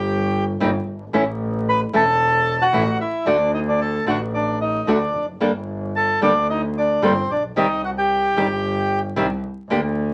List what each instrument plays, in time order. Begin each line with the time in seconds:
Already playing: double bass G1, bandoneon G4 G5
0.60 double bass G1, nylon-string guitar C3 G3 A#3 D#4 G4
0.86 double bass G1
1.13 double bass A1, nylon-string guitar E3 A3 C#4 E4
1.69 bandoneon B4 B5
1.93 double bass E1, nylon-string guitar E3 A3 C#4 E4, bandoneon A4 A5
2.62 bandoneon F#4 F#5
2.73 double bass A1, nylon-string guitar E3 A3 C#4 E4
3.01 bandoneon E4 E5
3.26 double bass D2, nylon-string guitar D3 A3 D4 F#4, bandoneon D4 D5
3.54 bandoneon D#4 D#5
3.69 bandoneon D4 D5
3.81 bandoneon A4 A5
4.06 double bass A1, nylon-string guitar D3 A3 D4 F#4, bandoneon F#4 F#5
4.34 bandoneon D4 D5
4.61 bandoneon D#4 D#5
4.87 double bass D2, nylon-string guitar D3 A3 D4 F#4, bandoneon D4 D5
5.14 double bass F1
5.40 double bass G1, nylon-string guitar D3 G3 A#3 D4 A4
5.96 bandoneon A4 A5
6.21 double bass D2, nylon-string guitar D3 G3 A#3 D4 A4, bandoneon D4 D5
6.50 bandoneon D#4 D#5
6.78 bandoneon D4 D5
7.02 double bass G1, nylon-string guitar D3 G3 A#3 D4 A4, bandoneon C4 C5
7.29 double bass A#1, bandoneon D4 D5
7.56 double bass C2, nylon-string guitar C3 D#3 G3 C4 G4, bandoneon D#4 D#5
7.84 bandoneon F#4 F#5
7.98 bandoneon G4 G5
8.36 double bass G1, nylon-string guitar C3 D#3 G3 C4 G4
9.16 double bass C2, nylon-string guitar C3 D#3 G3 C4 G4
9.69 double bass D2, nylon-string guitar D3 A#3 D4 G4